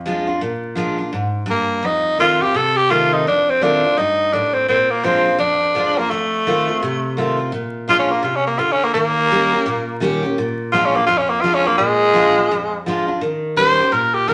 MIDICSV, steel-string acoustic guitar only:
0, 0, Header, 1, 2, 480
1, 0, Start_track
1, 0, Tempo, 355872
1, 548, Time_signature, 4, 2, 24, 8
1, 19339, End_track
2, 0, Start_track
2, 0, Title_t, "Steel-string acoustic guitar"
2, 0, Program_c, 0, 25
2, 0, Note_on_c, 0, 41, 87
2, 75, Note_on_c, 0, 53, 90
2, 81, Note_on_c, 0, 56, 93
2, 93, Note_on_c, 0, 62, 89
2, 102, Note_on_c, 0, 65, 94
2, 349, Note_off_c, 0, 65, 0
2, 350, Note_off_c, 0, 53, 0
2, 354, Note_off_c, 0, 56, 0
2, 360, Note_off_c, 0, 62, 0
2, 365, Note_on_c, 0, 65, 63
2, 382, Note_on_c, 0, 62, 52
2, 513, Note_off_c, 0, 41, 0
2, 544, Note_off_c, 0, 65, 0
2, 552, Note_off_c, 0, 62, 0
2, 556, Note_on_c, 0, 46, 86
2, 1018, Note_on_c, 0, 53, 85
2, 1032, Note_on_c, 0, 56, 90
2, 1035, Note_on_c, 0, 62, 96
2, 1047, Note_on_c, 0, 65, 99
2, 1302, Note_off_c, 0, 53, 0
2, 1308, Note_off_c, 0, 65, 0
2, 1309, Note_off_c, 0, 56, 0
2, 1311, Note_off_c, 0, 62, 0
2, 1324, Note_on_c, 0, 65, 57
2, 1343, Note_on_c, 0, 62, 45
2, 1475, Note_off_c, 0, 46, 0
2, 1503, Note_off_c, 0, 65, 0
2, 1513, Note_off_c, 0, 62, 0
2, 1519, Note_on_c, 0, 44, 85
2, 1962, Note_off_c, 0, 44, 0
2, 1967, Note_on_c, 0, 43, 93
2, 2440, Note_off_c, 0, 43, 0
2, 2464, Note_on_c, 0, 41, 87
2, 2946, Note_on_c, 0, 51, 85
2, 2961, Note_on_c, 0, 57, 89
2, 2964, Note_on_c, 0, 60, 89
2, 2965, Note_on_c, 0, 65, 92
2, 3227, Note_off_c, 0, 51, 0
2, 3230, Note_off_c, 0, 65, 0
2, 3235, Note_off_c, 0, 57, 0
2, 3236, Note_off_c, 0, 60, 0
2, 3246, Note_on_c, 0, 65, 60
2, 3258, Note_on_c, 0, 60, 49
2, 3390, Note_off_c, 0, 41, 0
2, 3425, Note_off_c, 0, 65, 0
2, 3430, Note_on_c, 0, 48, 91
2, 3431, Note_off_c, 0, 60, 0
2, 3915, Note_on_c, 0, 51, 86
2, 3921, Note_on_c, 0, 57, 96
2, 3933, Note_on_c, 0, 60, 93
2, 3940, Note_on_c, 0, 65, 96
2, 4353, Note_off_c, 0, 48, 0
2, 4374, Note_off_c, 0, 51, 0
2, 4377, Note_off_c, 0, 57, 0
2, 4383, Note_off_c, 0, 60, 0
2, 4387, Note_off_c, 0, 65, 0
2, 4412, Note_on_c, 0, 41, 79
2, 4872, Note_on_c, 0, 51, 85
2, 4879, Note_on_c, 0, 57, 89
2, 4886, Note_on_c, 0, 60, 88
2, 4892, Note_on_c, 0, 65, 102
2, 5151, Note_off_c, 0, 51, 0
2, 5155, Note_off_c, 0, 57, 0
2, 5158, Note_off_c, 0, 60, 0
2, 5161, Note_off_c, 0, 65, 0
2, 5176, Note_on_c, 0, 65, 58
2, 5194, Note_on_c, 0, 60, 46
2, 5325, Note_off_c, 0, 41, 0
2, 5351, Note_off_c, 0, 65, 0
2, 5360, Note_off_c, 0, 60, 0
2, 5362, Note_on_c, 0, 43, 83
2, 5818, Note_off_c, 0, 43, 0
2, 5846, Note_on_c, 0, 45, 88
2, 6301, Note_off_c, 0, 45, 0
2, 6318, Note_on_c, 0, 46, 82
2, 6792, Note_on_c, 0, 53, 93
2, 6798, Note_on_c, 0, 56, 92
2, 6806, Note_on_c, 0, 62, 100
2, 6808, Note_on_c, 0, 65, 104
2, 7049, Note_off_c, 0, 65, 0
2, 7065, Note_on_c, 0, 65, 51
2, 7070, Note_off_c, 0, 62, 0
2, 7072, Note_off_c, 0, 53, 0
2, 7075, Note_off_c, 0, 56, 0
2, 7086, Note_on_c, 0, 62, 46
2, 7238, Note_off_c, 0, 46, 0
2, 7257, Note_off_c, 0, 65, 0
2, 7262, Note_on_c, 0, 41, 97
2, 7267, Note_off_c, 0, 62, 0
2, 7752, Note_on_c, 0, 53, 88
2, 7754, Note_on_c, 0, 56, 87
2, 7765, Note_on_c, 0, 62, 90
2, 7772, Note_on_c, 0, 65, 101
2, 8032, Note_off_c, 0, 53, 0
2, 8033, Note_off_c, 0, 56, 0
2, 8034, Note_off_c, 0, 65, 0
2, 8039, Note_off_c, 0, 62, 0
2, 8050, Note_on_c, 0, 65, 60
2, 8078, Note_on_c, 0, 62, 44
2, 8191, Note_off_c, 0, 41, 0
2, 8230, Note_off_c, 0, 65, 0
2, 8242, Note_on_c, 0, 41, 93
2, 8243, Note_off_c, 0, 62, 0
2, 8722, Note_on_c, 0, 51, 81
2, 8725, Note_on_c, 0, 57, 96
2, 8733, Note_on_c, 0, 60, 90
2, 8740, Note_on_c, 0, 65, 99
2, 8992, Note_off_c, 0, 65, 0
2, 8998, Note_off_c, 0, 51, 0
2, 8999, Note_off_c, 0, 57, 0
2, 9003, Note_off_c, 0, 60, 0
2, 9008, Note_on_c, 0, 65, 59
2, 9027, Note_on_c, 0, 60, 51
2, 9161, Note_off_c, 0, 41, 0
2, 9189, Note_off_c, 0, 65, 0
2, 9198, Note_off_c, 0, 60, 0
2, 9206, Note_on_c, 0, 48, 92
2, 9669, Note_on_c, 0, 51, 90
2, 9684, Note_on_c, 0, 57, 82
2, 9685, Note_on_c, 0, 60, 90
2, 9686, Note_on_c, 0, 65, 97
2, 9925, Note_off_c, 0, 65, 0
2, 9941, Note_on_c, 0, 65, 57
2, 9951, Note_off_c, 0, 51, 0
2, 9952, Note_off_c, 0, 60, 0
2, 9959, Note_off_c, 0, 57, 0
2, 9969, Note_on_c, 0, 60, 52
2, 10123, Note_off_c, 0, 48, 0
2, 10135, Note_off_c, 0, 65, 0
2, 10145, Note_on_c, 0, 46, 84
2, 10149, Note_off_c, 0, 60, 0
2, 10624, Note_on_c, 0, 53, 89
2, 10635, Note_on_c, 0, 56, 90
2, 10637, Note_on_c, 0, 62, 88
2, 10646, Note_on_c, 0, 65, 93
2, 10887, Note_off_c, 0, 65, 0
2, 10903, Note_on_c, 0, 65, 58
2, 10909, Note_off_c, 0, 53, 0
2, 10909, Note_off_c, 0, 62, 0
2, 10915, Note_off_c, 0, 56, 0
2, 10926, Note_on_c, 0, 62, 44
2, 11072, Note_off_c, 0, 46, 0
2, 11096, Note_off_c, 0, 65, 0
2, 11096, Note_on_c, 0, 48, 88
2, 11108, Note_off_c, 0, 62, 0
2, 11567, Note_off_c, 0, 48, 0
2, 11584, Note_on_c, 0, 50, 94
2, 12051, Note_off_c, 0, 50, 0
2, 12069, Note_on_c, 0, 51, 93
2, 12537, Note_off_c, 0, 51, 0
2, 12553, Note_on_c, 0, 51, 86
2, 12566, Note_on_c, 0, 55, 85
2, 12570, Note_on_c, 0, 67, 104
2, 12575, Note_on_c, 0, 61, 93
2, 12833, Note_off_c, 0, 51, 0
2, 12834, Note_off_c, 0, 67, 0
2, 12840, Note_off_c, 0, 55, 0
2, 12844, Note_off_c, 0, 61, 0
2, 12850, Note_on_c, 0, 67, 54
2, 12871, Note_on_c, 0, 61, 51
2, 13027, Note_on_c, 0, 46, 93
2, 13030, Note_off_c, 0, 67, 0
2, 13040, Note_off_c, 0, 61, 0
2, 13492, Note_on_c, 0, 51, 83
2, 13503, Note_on_c, 0, 55, 91
2, 13512, Note_on_c, 0, 61, 105
2, 13519, Note_on_c, 0, 67, 110
2, 13778, Note_off_c, 0, 67, 0
2, 13783, Note_off_c, 0, 51, 0
2, 13788, Note_off_c, 0, 55, 0
2, 13793, Note_off_c, 0, 61, 0
2, 13795, Note_on_c, 0, 67, 65
2, 13811, Note_on_c, 0, 61, 50
2, 13953, Note_off_c, 0, 46, 0
2, 13982, Note_off_c, 0, 67, 0
2, 13990, Note_off_c, 0, 61, 0
2, 14002, Note_on_c, 0, 46, 82
2, 14479, Note_on_c, 0, 53, 81
2, 14481, Note_on_c, 0, 56, 106
2, 14495, Note_on_c, 0, 62, 98
2, 14495, Note_on_c, 0, 65, 102
2, 14752, Note_off_c, 0, 65, 0
2, 14756, Note_off_c, 0, 53, 0
2, 14757, Note_off_c, 0, 56, 0
2, 14764, Note_off_c, 0, 62, 0
2, 14768, Note_on_c, 0, 65, 57
2, 14798, Note_on_c, 0, 62, 49
2, 14920, Note_off_c, 0, 46, 0
2, 14947, Note_on_c, 0, 41, 91
2, 14948, Note_off_c, 0, 65, 0
2, 14963, Note_off_c, 0, 62, 0
2, 15425, Note_on_c, 0, 53, 92
2, 15433, Note_on_c, 0, 56, 91
2, 15443, Note_on_c, 0, 62, 89
2, 15447, Note_on_c, 0, 65, 94
2, 15699, Note_off_c, 0, 65, 0
2, 15708, Note_off_c, 0, 53, 0
2, 15712, Note_off_c, 0, 56, 0
2, 15715, Note_on_c, 0, 65, 57
2, 15717, Note_off_c, 0, 62, 0
2, 15736, Note_on_c, 0, 62, 49
2, 15872, Note_off_c, 0, 41, 0
2, 15898, Note_on_c, 0, 46, 87
2, 15901, Note_off_c, 0, 65, 0
2, 15912, Note_off_c, 0, 62, 0
2, 16370, Note_on_c, 0, 53, 95
2, 16373, Note_on_c, 0, 56, 91
2, 16378, Note_on_c, 0, 62, 97
2, 16390, Note_on_c, 0, 65, 102
2, 16660, Note_off_c, 0, 53, 0
2, 16661, Note_off_c, 0, 56, 0
2, 16664, Note_off_c, 0, 62, 0
2, 16670, Note_off_c, 0, 65, 0
2, 16689, Note_on_c, 0, 65, 57
2, 16711, Note_on_c, 0, 62, 51
2, 16826, Note_off_c, 0, 46, 0
2, 16867, Note_off_c, 0, 65, 0
2, 16878, Note_off_c, 0, 62, 0
2, 16878, Note_on_c, 0, 41, 93
2, 17349, Note_on_c, 0, 53, 91
2, 17366, Note_on_c, 0, 56, 93
2, 17369, Note_on_c, 0, 62, 86
2, 17377, Note_on_c, 0, 65, 100
2, 17610, Note_off_c, 0, 65, 0
2, 17626, Note_on_c, 0, 65, 55
2, 17629, Note_off_c, 0, 53, 0
2, 17629, Note_off_c, 0, 62, 0
2, 17637, Note_off_c, 0, 56, 0
2, 17645, Note_on_c, 0, 62, 46
2, 17795, Note_off_c, 0, 41, 0
2, 17815, Note_off_c, 0, 65, 0
2, 17822, Note_on_c, 0, 51, 92
2, 17824, Note_off_c, 0, 62, 0
2, 18280, Note_off_c, 0, 51, 0
2, 18296, Note_on_c, 0, 51, 95
2, 18310, Note_on_c, 0, 55, 93
2, 18316, Note_on_c, 0, 61, 93
2, 18320, Note_on_c, 0, 67, 89
2, 18581, Note_off_c, 0, 51, 0
2, 18588, Note_off_c, 0, 55, 0
2, 18589, Note_off_c, 0, 67, 0
2, 18591, Note_off_c, 0, 61, 0
2, 18605, Note_on_c, 0, 67, 67
2, 18627, Note_on_c, 0, 61, 55
2, 18774, Note_on_c, 0, 46, 91
2, 18783, Note_off_c, 0, 67, 0
2, 18794, Note_off_c, 0, 61, 0
2, 19257, Note_on_c, 0, 51, 100
2, 19264, Note_on_c, 0, 55, 89
2, 19275, Note_on_c, 0, 61, 95
2, 19284, Note_on_c, 0, 67, 97
2, 19339, Note_off_c, 0, 46, 0
2, 19339, Note_off_c, 0, 51, 0
2, 19339, Note_off_c, 0, 55, 0
2, 19339, Note_off_c, 0, 61, 0
2, 19339, Note_off_c, 0, 67, 0
2, 19339, End_track
0, 0, End_of_file